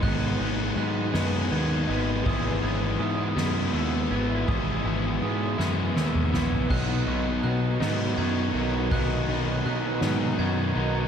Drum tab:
CC |------------|------------|------------|x-----------|
RD |x-x-x-x-x-x-|x-x-x-x-x-x-|x-x-x-------|x-x-x-x-x-x-|
SD |------o-----|------o-----|------o-o-o-|------o-----|
T2 |------------|------------|---------o--|------------|
FT |------------|------------|-----------o|------------|
BD |o-----------|o-----------|o-----------|o-----------|

CC |------------|
RD |x-x-x-x-x-x-|
SD |------o-----|
T2 |------------|
FT |------------|
BD |o-----------|